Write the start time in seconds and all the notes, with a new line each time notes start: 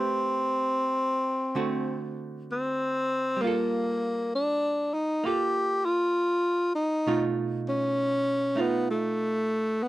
Already playing: A3 C4 G4 B4
1.55 D3 A3 C4 F#4
2.52 C4
3.37 G3
3.41 A#3 F4
3.47 A4
4.35 D4
4.94 D#4
5.24 A#3 F4 G4 A4
5.85 F4
6.75 D#4
7.07 B2 A3 D#4 F4
7.69 C#4
8.55 A3 D#4 F4
8.61 B3
8.91 A3
9.83 B3